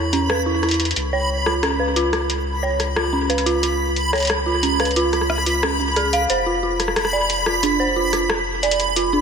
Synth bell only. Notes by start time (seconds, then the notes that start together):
0.13 C#4
0.30 B4
0.46 E4
0.63 E4
1.13 C#5
1.46 F4
1.63 C#4
1.79 B4
1.96 F4
2.13 F4
2.63 C#5
2.96 F4
3.13 C#4
3.30 B4
3.46 F4
3.63 F4
4.13 C#5
4.46 F4
4.63 C#4
4.80 B4
4.96 F4
5.13 F4
5.46 F4
5.63 C#4
5.80 C#4
5.96 G#4
6.13 F5
6.30 C5
6.46 F4
6.63 F4
7.13 D5
7.46 F4
7.63 D4
7.80 C5
7.96 F4
8.13 F4
8.63 D5
8.96 F4
9.13 D4